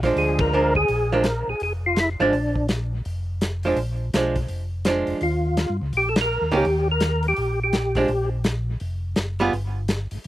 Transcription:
Already playing: A#1
0.03 F3 G#3 D4, kick, open hi-hat
0.16 D2 G#4, open hi-hat
0.39 A#4, kick, ride
0.53 F3 G#3 D4
0.75 G#4, kick
0.88 A#1, open hi-hat
1.12 F3 G#3 D4 A#4
1.24 snare, closed hi-hat
1.47 A#1 G#4
1.60 F1 G#4, open hi-hat
1.86 F4
1.96 E4, snare, closed hi-hat
2.19 G#1 F3 G#3 D4
2.33 A#1, open hi-hat
2.56 kick
2.69 snare, closed hi-hat
3.05 F1, open hi-hat
3.41 snare, closed hi-hat
3.63 F3 G#3 D4, open hi-hat
3.76 A#1, open hi-hat
4.13 B1 F3 G#3 D4, snare, closed hi-hat
4.36 kick, open hi-hat
4.48 F1, open hi-hat
4.85 F3 G#3 D4, snare, closed hi-hat
5.07 F1, open hi-hat
5.21 D#2 F4, open hi-hat
5.57 snare, closed hi-hat
5.69 G2
5.82 C#2
5.93 A#1, open hi-hat
5.97 G4
6.09 A4
6.16 snare, ride
6.21 A#4
6.41 D#2
6.51 C#2 D#3 A#3 C#4 G4, open hi-hat
6.57 G4
6.65 D#2, open hi-hat
6.91 A#4
7.00 snare, closed hi-hat
7.23 open hi-hat
7.28 G4
7.36 A#1, open hi-hat
7.64 G4
7.73 snare, closed hi-hat
7.95 F3 G#3 D4, kick, open hi-hat
8.08 A#1, open hi-hat
8.44 snare, closed hi-hat
8.80 F1, open hi-hat
9.16 F#1, snare, closed hi-hat
9.39 G3 B3 F4 G#4, open hi-hat
9.53 G1, open hi-hat
9.88 snare, closed hi-hat
10.11 G1, open hi-hat

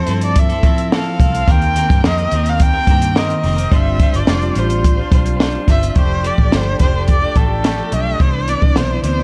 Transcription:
Already playing: A3 C4 A4 C5
0.07 G2 F3 C4 E4 A4, closed hi-hat
0.21 D5, closed hi-hat
0.36 E5, kick, closed hi-hat
0.49 C4 E4 A4, closed hi-hat
0.63 A2 F3 C4 E4 A4, kick, closed hi-hat
0.78 closed hi-hat
0.92 F3 C4 E4 A4 F5, snare
1.18 C2 F3 C4 E4 A4, kick, closed hi-hat
1.32 C4 E4 A4, closed hi-hat
1.47 D#2 D#3 A#3 C4 G4 A#4 G5, kick, closed hi-hat
1.62 closed hi-hat
1.75 D#3 C4 G4 A#4, closed hi-hat
1.89 G2 C4 G4 A#4, kick, closed hi-hat
2.04 F2 D#3 C4 G4 A#4 D#5, snare
2.18 closed hi-hat
2.31 D#2 D#3 C4 G4, closed hi-hat
2.36 A#4
2.46 F5, closed hi-hat
2.60 G5, kick, closed hi-hat
2.74 C4 G4 A#4
2.87 G2 D#3 C4 G4 A#4, kick, closed hi-hat
3.02 closed hi-hat
3.15 D#3 C4 G4 A#4 D#5, snare
3.30 closed hi-hat
3.43 F1 D#3 C4 G4 A#4, open hi-hat
3.56 C4 G4 A#4, closed hi-hat
3.70 G1 G3 D4 F4 C5, kick, closed hi-hat
3.75 E5
3.99 G3 D4 F4 C5, kick, closed hi-hat
4.13 G1 D4 F4 C5 D5, closed hi-hat
4.27 F1 G3 D4 F4 C5, snare
4.42 closed hi-hat
4.55 A1 G3 D4 F4 C5, closed hi-hat
4.70 closed hi-hat
4.84 kick, closed hi-hat
4.97 D4 F4 C5
5.11 B1 G3 D4 F4 C5, kick, closed hi-hat
5.26 closed hi-hat
5.40 G3 D4 F4 C5, snare
5.68 G1 G3 D4 F4 E5, kick, snare, closed hi-hat
5.72 C5
5.82 D4 F4 C5, closed hi-hat
5.95 F1 F3 A3 D4 G4 A4 C5, kick, closed hi-hat
6.23 F3 A3 D4 G4 D5, closed hi-hat
6.38 A1, kick
6.52 G1 F3 A3 D4 G4 C5, snare, closed hi-hat
6.66 A3 D4 G4
6.79 F1 F3 A3 D4 G4 C5, kick, closed hi-hat
6.94 A3 D4 G4
7.08 D5, kick, closed hi-hat
7.22 A3 D4 G4
7.35 A1 F3 A3 D4 G4 A4, kick, closed hi-hat
7.48 D4 G4
7.53 A3
7.63 F3 A3 D4 G4, snare, closed hi-hat
7.91 B1 F3 A3 D4 G4 E5, closed hi-hat
8.05 A3 D4 G4
8.18 C2 C3 E3 B3 D4 E4 C5, kick, closed hi-hat
8.47 C3 E3 B3 D4 D5, closed hi-hat
8.62 C2, kick
8.74 B1 C3 E3 B3 D4 C5, snare, closed hi-hat
8.90 E3 B3 D4
9.03 D2 C3 E3 B3 D4 C5, closed hi-hat
9.17 B3 D4

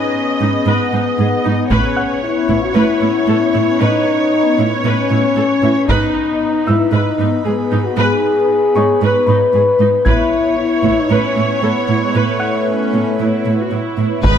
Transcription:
Already playing: B3 C#4 D#4 G#4 B4 D#5 G#5
0.40 G#2 D#4
0.66 G#2 B3 B4
0.93 G#2 D#4
1.19 G#2 G#4
1.45 G#2 D#4
1.70 A2 B3 C#4 B4 C#5, taiko
1.96 F#5 F#6
2.23 E4
2.49 A2 E4, taiko
2.63 F#4
2.75 A2 E4 B4
3.02 A2 E4
3.28 A2 A4
3.54 A2 E4
3.80 A2 D#4 B4
4.59 A2 E4
4.84 A2 C#4 B4
5.11 A2 E4
5.36 A2 A4
5.63 A2 E4
5.88 G#2 B3 D#4 B4, taiko
6.67 G#2 D#4 E4 E6
6.93 G#2 D#4 B4
7.19 G#2 D#4
7.45 G#2 G#4
7.71 G#2 D#4
7.85 F#4
7.97 G#2 G#4 B4
8.76 G#2 D#4 C#5 C#6
9.02 G#2 B4
9.27 G#2 D#4 B5
9.54 G#2 G#4
9.80 G#2 D#4
10.05 A2 B3 E4 B4 C#5 G#6, taiko
10.58 E4
10.84 A2 E4, taiko
10.98 D#4
11.10 A2 C#4 B4
11.37 A2 E4
11.61 A2 B3 A4
11.89 A2 E4
12.01 G#3
12.14 A2 A3 B4
12.39 F#5 F#6
12.67 C#4
12.94 A2
13.19 A2 E4
13.45 A2
13.60 F#4
13.72 A2 E4
13.98 A2
14.23 G#1 G#2 G#3 B3 D#4 B4, taiko

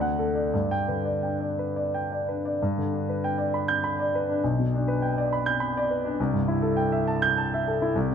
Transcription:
Already playing: D2 D5
0.01 F#5
0.19 A4
0.35 D5
0.54 G2 D5
0.71 G5
0.88 D3 B4
1.05 D5
1.23 D4 G5
1.41 D5
1.59 B4
1.76 D5
1.94 G5
2.12 D5
2.28 D4 B4
2.45 D5
2.62 G2
2.78 D3
2.93 D4
3.09 B4
3.24 G5
3.38 D5
3.54 B5
3.68 G6
3.84 B5
4.00 D5
4.15 B4
4.29 D4
4.44 B1
4.59 B2
4.74 D4
4.88 B4
5.02 G5
5.18 D5
5.33 B5
5.46 G6
5.60 B5
5.77 D5
5.90 B4
6.05 D4
6.20 C2
6.33 G2
6.48 E4
6.62 A4
6.77 G5
6.92 E5
7.07 A5
7.22 G6
7.38 A5
7.54 E5
7.68 A4
7.82 E4
7.96 C2
8.11 C3

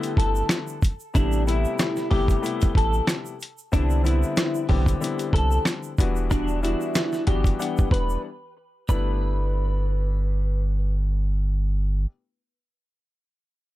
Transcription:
Already playing: D3 G3 A3 B3 E4 G4
0.03 closed hi-hat, shaker
0.17 G1 A4, kick, closed hi-hat
0.36 shaker
0.49 cross-stick, snare, closed hi-hat, shaker
0.68 shaker
0.82 kick, closed hi-hat, shaker
1.00 shaker
1.14 A1 C3 G3 A3 B3 D4 E4, kick, closed hi-hat, shaker
1.32 shaker
1.47 C3 G3 A3 B3 E4, closed hi-hat, shaker
1.65 shaker
1.79 cross-stick, snare, closed hi-hat, shaker
1.97 snare, shaker
2.10 G1 C3 G3 A3 B3 E4 G4, kick, open hi-hat
2.28 kick, closed hi-hat, shaker
2.42 C3 G3 A3 B3 E4, shaker
2.46 closed hi-hat
2.61 kick, closed hi-hat, shaker
2.75 A1 A4, kick, closed hi-hat
2.93 shaker
3.07 cross-stick, snare, closed hi-hat, shaker
3.26 shaker
3.41 closed hi-hat, shaker
3.58 shaker
3.72 C2 D3 G3 B3 C4 D4 E4, kick, closed hi-hat, shaker
3.90 shaker
4.03 D3 G3 B3 C4 E4, closed hi-hat, shaker
4.23 shaker
4.37 cross-stick, snare, closed hi-hat, shaker
4.55 shaker
4.69 B1 D3 G3 B3 C4 E4 G4, kick, open hi-hat
4.86 kick, closed hi-hat, shaker
5.01 D3 G3 B3 C4 E4, closed hi-hat, shaker
5.19 closed hi-hat, shaker
5.33 C2 A4, kick, closed hi-hat
5.51 shaker
5.65 cross-stick, snare, closed hi-hat, shaker
5.83 shaker
5.98 E1 E3 G3 B3 D4 F#4, kick, closed hi-hat, shaker
6.16 shaker
6.30 E3 G3 B3 D4 F#4, kick, closed hi-hat, shaker
6.48 shaker
6.63 E3 G3 B3 D4 E4 F#4, closed hi-hat, shaker
6.81 shaker
6.95 cross-stick, snare, closed hi-hat, shaker
7.13 snare, shaker
7.26 G1 E3 G3 B3 D4 F#4 G4, kick, closed hi-hat
7.44 kick, closed hi-hat, shaker
7.59 E3 G3 B3 D4 F#5, closed hi-hat, shaker
7.77 kick, shaker
7.91 E1 B4, kick, closed hi-hat
8.10 shaker
8.89 G1 G3 A3 B3 D4 E4 B4, kick, shaker

